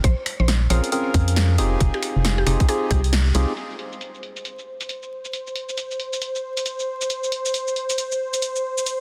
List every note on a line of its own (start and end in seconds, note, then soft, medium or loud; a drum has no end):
0.04 0.15 A#1 loud
0.04 0.21 C5 loud
0.04 kick loud
0.04 closed hi-hat medium
0.26 finger snap medium
0.26 open hi-hat loud
0.40 0.67 A#1 loud
0.40 0.54 C5 loud
0.48 snare loud
0.48 closed hi-hat medium
0.70 0.81 A#1 medium
0.70 0.90 C4 medium
0.70 0.90 C#4 medium
0.70 0.90 F4 medium
0.70 0.90 G#4 medium
0.70 0.90 A#4 medium
0.70 0.87 C5 loud
0.70 open hi-hat loud
0.84 closed hi-hat soft
0.92 1.56 C4 loud
0.92 1.56 C#4 medium
0.92 1.56 F4 medium
0.92 1.56 G#4 medium
0.92 1.56 A#4 loud
0.92 closed hi-hat medium
1.14 1.60 F2 loud
1.14 kick loud
1.14 open hi-hat loud
1.28 closed hi-hat medium
1.36 snare loud
1.36 closed hi-hat medium
1.58 1.77 F1 medium
1.58 2.45 C4 medium
1.58 2.45 D#4 medium
1.58 2.45 F4 medium
1.58 2.45 G4 medium
1.58 2.45 G#4 loud
1.58 open hi-hat loud
1.80 1.91 F1 loud
1.80 kick loud
1.80 closed hi-hat medium
1.94 2.15 G4 medium
1.94 finger snap soft
2.03 finger snap medium
2.03 open hi-hat loud
2.16 2.44 F1 loud
2.25 snare loud
2.25 closed hi-hat medium
2.38 2.53 G4 medium
2.47 2.57 F1 medium
2.47 2.67 C4 medium
2.47 2.67 D#4 medium
2.47 2.67 F4 medium
2.47 2.67 G4 medium
2.47 2.67 G#4 loud
2.47 finger snap medium
2.47 open hi-hat loud
2.60 kick loud
2.60 closed hi-hat soft
2.69 3.01 C4 loud
2.69 3.01 D#4 medium
2.69 3.01 F4 medium
2.69 3.01 G4 medium
2.69 2.82 G#4 medium
2.69 3.01 G#4 loud
2.69 closed hi-hat medium
2.91 3.32 C2 loud
2.91 3.08 G4 loud
2.91 kick loud
2.91 open hi-hat loud
3.04 open hi-hat medium
3.13 snare loud
3.13 closed hi-hat medium
3.35 3.46 C2 medium
3.35 3.53 C4 loud
3.35 3.53 D#4 medium
3.35 3.53 F4 medium
3.35 3.53 G4 medium
3.35 3.53 G#4 loud
3.35 open hi-hat loud
3.57 9.00 C5 medium
3.57 closed hi-hat medium
3.57 cabasa soft
3.70 cabasa soft
3.79 closed hi-hat medium
3.92 cabasa medium
4.01 closed hi-hat medium
4.01 cabasa soft
4.14 cabasa soft
4.23 closed hi-hat soft
4.37 closed hi-hat soft
4.37 cabasa medium
4.45 closed hi-hat medium
4.45 cabasa soft
4.59 cabasa soft
4.81 closed hi-hat medium
4.81 cabasa medium
4.89 closed hi-hat medium
4.89 cabasa soft
5.03 cabasa soft
5.25 cabasa medium
5.33 closed hi-hat medium
5.33 cabasa soft
5.47 cabasa soft
5.55 closed hi-hat medium
5.69 cabasa medium
5.78 closed hi-hat medium
5.78 cabasa soft
5.91 cabasa soft
6.00 closed hi-hat soft
6.13 closed hi-hat soft
6.13 cabasa medium
6.22 closed hi-hat medium
6.22 cabasa soft
6.35 cabasa soft
6.57 closed hi-hat medium
6.57 cabasa medium
6.66 closed hi-hat medium
6.66 cabasa soft
6.79 cabasa soft
7.01 cabasa medium
7.10 closed hi-hat medium
7.10 cabasa soft
7.23 cabasa soft
7.32 closed hi-hat medium
7.46 cabasa medium
7.54 closed hi-hat medium
7.54 cabasa soft
7.68 cabasa soft
7.76 closed hi-hat soft
7.90 closed hi-hat soft
7.90 cabasa medium
7.98 closed hi-hat medium
7.98 cabasa soft
8.12 cabasa soft
8.34 closed hi-hat medium
8.34 cabasa medium
8.42 closed hi-hat medium
8.42 cabasa soft
8.56 cabasa soft
8.78 cabasa medium
8.86 closed hi-hat medium
8.86 cabasa soft